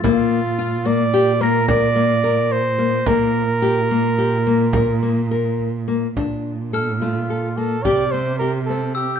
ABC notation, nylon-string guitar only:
X:1
M:11/8
L:1/8
Q:1/4=108
K:Bb
V:1 name="Nylon-string guitar"
B,2 F B, G B, B B, B2 B, | B,2 G B, G B, B B, B2 B, | D2 A A, A B, G C G C2 |]